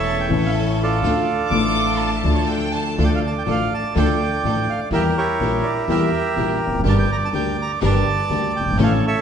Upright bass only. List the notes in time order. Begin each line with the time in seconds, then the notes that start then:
Already playing: E1
0.30 A1
1.02 D2
1.51 A1
2.24 D2
2.98 D2
3.47 A1
3.96 D2
4.44 A1
4.91 E2
5.40 A#1
5.88 E2
6.36 A#1
6.67 E1
6.74 F1
6.79 F#1
6.84 G1
7.33 D2
7.82 G1
8.30 D2
8.60 F#1
8.66 G1
8.72 G#1
8.77 A1